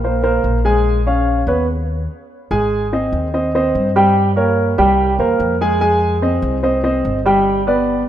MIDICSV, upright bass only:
0, 0, Header, 1, 2, 480
1, 0, Start_track
1, 0, Key_signature, -4, "major"
1, 0, Tempo, 413223
1, 993, Time_signature, 4, 2, 24, 8
1, 9394, End_track
2, 0, Start_track
2, 0, Title_t, "Upright bass"
2, 0, Program_c, 0, 32
2, 0, Note_on_c, 0, 34, 79
2, 466, Note_off_c, 0, 34, 0
2, 511, Note_on_c, 0, 34, 82
2, 1643, Note_off_c, 0, 34, 0
2, 1704, Note_on_c, 0, 39, 82
2, 2384, Note_off_c, 0, 39, 0
2, 2912, Note_on_c, 0, 32, 85
2, 3588, Note_off_c, 0, 32, 0
2, 3630, Note_on_c, 0, 39, 84
2, 4307, Note_off_c, 0, 39, 0
2, 4356, Note_on_c, 0, 43, 86
2, 5485, Note_off_c, 0, 43, 0
2, 5554, Note_on_c, 0, 36, 83
2, 6001, Note_off_c, 0, 36, 0
2, 6025, Note_on_c, 0, 40, 68
2, 6253, Note_off_c, 0, 40, 0
2, 6268, Note_on_c, 0, 41, 90
2, 7400, Note_off_c, 0, 41, 0
2, 7461, Note_on_c, 0, 36, 89
2, 8140, Note_off_c, 0, 36, 0
2, 8188, Note_on_c, 0, 31, 88
2, 9319, Note_off_c, 0, 31, 0
2, 9394, End_track
0, 0, End_of_file